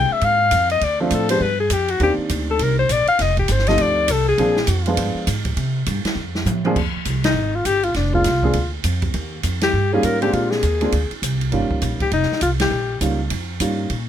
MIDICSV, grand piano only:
0, 0, Header, 1, 2, 480
1, 0, Start_track
1, 0, Tempo, 297324
1, 1314, Time_signature, 4, 2, 24, 8
1, 22744, End_track
2, 0, Start_track
2, 0, Title_t, "Grand piano"
2, 0, Program_c, 0, 0
2, 0, Note_on_c, 0, 56, 67
2, 0, Note_on_c, 0, 58, 56
2, 0, Note_on_c, 0, 60, 59
2, 0, Note_on_c, 0, 62, 53
2, 0, Note_on_c, 0, 65, 68
2, 729, Note_off_c, 0, 56, 0
2, 731, Note_off_c, 0, 58, 0
2, 732, Note_off_c, 0, 60, 0
2, 735, Note_off_c, 0, 62, 0
2, 737, Note_off_c, 0, 65, 0
2, 1618, Note_on_c, 0, 57, 71
2, 1619, Note_on_c, 0, 53, 74
2, 1625, Note_on_c, 0, 62, 68
2, 1626, Note_on_c, 0, 60, 67
2, 1631, Note_on_c, 0, 65, 73
2, 2064, Note_off_c, 0, 53, 0
2, 2064, Note_off_c, 0, 57, 0
2, 2067, Note_off_c, 0, 60, 0
2, 2067, Note_off_c, 0, 62, 0
2, 2070, Note_off_c, 0, 65, 0
2, 2098, Note_on_c, 0, 53, 71
2, 2105, Note_on_c, 0, 56, 58
2, 2109, Note_on_c, 0, 59, 61
2, 2112, Note_on_c, 0, 67, 77
2, 2113, Note_on_c, 0, 62, 62
2, 2259, Note_off_c, 0, 53, 0
2, 2262, Note_off_c, 0, 56, 0
2, 2264, Note_off_c, 0, 59, 0
2, 2265, Note_off_c, 0, 67, 0
2, 2266, Note_off_c, 0, 62, 0
2, 3232, Note_on_c, 0, 51, 59
2, 3240, Note_on_c, 0, 58, 56
2, 3241, Note_on_c, 0, 62, 55
2, 3242, Note_on_c, 0, 60, 54
2, 3247, Note_on_c, 0, 67, 70
2, 4560, Note_off_c, 0, 51, 0
2, 4564, Note_off_c, 0, 58, 0
2, 4564, Note_off_c, 0, 62, 0
2, 4565, Note_off_c, 0, 60, 0
2, 4567, Note_off_c, 0, 67, 0
2, 5935, Note_on_c, 0, 53, 70
2, 5943, Note_on_c, 0, 60, 63
2, 5944, Note_on_c, 0, 57, 60
2, 5948, Note_on_c, 0, 63, 66
2, 5950, Note_on_c, 0, 67, 72
2, 6556, Note_off_c, 0, 53, 0
2, 6561, Note_off_c, 0, 57, 0
2, 6561, Note_off_c, 0, 60, 0
2, 6563, Note_off_c, 0, 63, 0
2, 6564, Note_off_c, 0, 67, 0
2, 7085, Note_on_c, 0, 53, 70
2, 7086, Note_on_c, 0, 60, 64
2, 7090, Note_on_c, 0, 58, 58
2, 7094, Note_on_c, 0, 68, 82
2, 7095, Note_on_c, 0, 62, 67
2, 7343, Note_off_c, 0, 53, 0
2, 7343, Note_off_c, 0, 60, 0
2, 7346, Note_off_c, 0, 58, 0
2, 7347, Note_off_c, 0, 68, 0
2, 7348, Note_off_c, 0, 62, 0
2, 7864, Note_on_c, 0, 53, 68
2, 7867, Note_on_c, 0, 56, 70
2, 7870, Note_on_c, 0, 59, 67
2, 7872, Note_on_c, 0, 65, 81
2, 7874, Note_on_c, 0, 62, 67
2, 8481, Note_off_c, 0, 53, 0
2, 8482, Note_off_c, 0, 56, 0
2, 8484, Note_off_c, 0, 59, 0
2, 8485, Note_off_c, 0, 65, 0
2, 8486, Note_off_c, 0, 62, 0
2, 10744, Note_on_c, 0, 53, 83
2, 10744, Note_on_c, 0, 58, 75
2, 10751, Note_on_c, 0, 60, 71
2, 10751, Note_on_c, 0, 68, 87
2, 10753, Note_on_c, 0, 62, 70
2, 10899, Note_off_c, 0, 53, 0
2, 10899, Note_off_c, 0, 58, 0
2, 10903, Note_off_c, 0, 60, 0
2, 10903, Note_off_c, 0, 62, 0
2, 10903, Note_off_c, 0, 68, 0
2, 13137, Note_on_c, 0, 56, 57
2, 13142, Note_on_c, 0, 58, 55
2, 13146, Note_on_c, 0, 60, 53
2, 13149, Note_on_c, 0, 62, 56
2, 13156, Note_on_c, 0, 65, 69
2, 13297, Note_off_c, 0, 56, 0
2, 13299, Note_off_c, 0, 58, 0
2, 13301, Note_off_c, 0, 60, 0
2, 13303, Note_off_c, 0, 62, 0
2, 13306, Note_off_c, 0, 65, 0
2, 13618, Note_on_c, 0, 56, 64
2, 13621, Note_on_c, 0, 58, 58
2, 13624, Note_on_c, 0, 60, 60
2, 13627, Note_on_c, 0, 62, 56
2, 13630, Note_on_c, 0, 68, 76
2, 13777, Note_off_c, 0, 56, 0
2, 13779, Note_off_c, 0, 58, 0
2, 13781, Note_off_c, 0, 60, 0
2, 13782, Note_off_c, 0, 62, 0
2, 13784, Note_off_c, 0, 68, 0
2, 16030, Note_on_c, 0, 58, 74
2, 16033, Note_on_c, 0, 55, 77
2, 16034, Note_on_c, 0, 61, 72
2, 16038, Note_on_c, 0, 63, 69
2, 16039, Note_on_c, 0, 65, 89
2, 16470, Note_off_c, 0, 58, 0
2, 16472, Note_off_c, 0, 55, 0
2, 16472, Note_off_c, 0, 61, 0
2, 16474, Note_off_c, 0, 63, 0
2, 16475, Note_off_c, 0, 65, 0
2, 16500, Note_on_c, 0, 56, 73
2, 16506, Note_on_c, 0, 58, 72
2, 16510, Note_on_c, 0, 60, 67
2, 16510, Note_on_c, 0, 67, 80
2, 16512, Note_on_c, 0, 62, 64
2, 17122, Note_off_c, 0, 56, 0
2, 17125, Note_off_c, 0, 58, 0
2, 17127, Note_off_c, 0, 60, 0
2, 17127, Note_off_c, 0, 67, 0
2, 17128, Note_off_c, 0, 62, 0
2, 17458, Note_on_c, 0, 56, 68
2, 17462, Note_on_c, 0, 58, 67
2, 17468, Note_on_c, 0, 65, 70
2, 17469, Note_on_c, 0, 60, 61
2, 17470, Note_on_c, 0, 62, 63
2, 17619, Note_off_c, 0, 56, 0
2, 17622, Note_off_c, 0, 58, 0
2, 17625, Note_off_c, 0, 60, 0
2, 17625, Note_off_c, 0, 65, 0
2, 17626, Note_off_c, 0, 62, 0
2, 18595, Note_on_c, 0, 55, 65
2, 18598, Note_on_c, 0, 58, 62
2, 18602, Note_on_c, 0, 63, 58
2, 18603, Note_on_c, 0, 61, 67
2, 18609, Note_on_c, 0, 65, 72
2, 19926, Note_off_c, 0, 55, 0
2, 19927, Note_off_c, 0, 58, 0
2, 19929, Note_off_c, 0, 63, 0
2, 19930, Note_off_c, 0, 61, 0
2, 19933, Note_off_c, 0, 65, 0
2, 21002, Note_on_c, 0, 55, 58
2, 21010, Note_on_c, 0, 58, 53
2, 21010, Note_on_c, 0, 61, 50
2, 21011, Note_on_c, 0, 63, 53
2, 21017, Note_on_c, 0, 65, 64
2, 21267, Note_off_c, 0, 55, 0
2, 21270, Note_off_c, 0, 58, 0
2, 21271, Note_off_c, 0, 61, 0
2, 21271, Note_off_c, 0, 63, 0
2, 21274, Note_off_c, 0, 65, 0
2, 21956, Note_on_c, 0, 55, 53
2, 21963, Note_on_c, 0, 58, 47
2, 21966, Note_on_c, 0, 63, 51
2, 21970, Note_on_c, 0, 61, 47
2, 21973, Note_on_c, 0, 65, 59
2, 22438, Note_off_c, 0, 55, 0
2, 22441, Note_off_c, 0, 58, 0
2, 22443, Note_off_c, 0, 63, 0
2, 22445, Note_off_c, 0, 61, 0
2, 22446, Note_off_c, 0, 65, 0
2, 22744, End_track
0, 0, End_of_file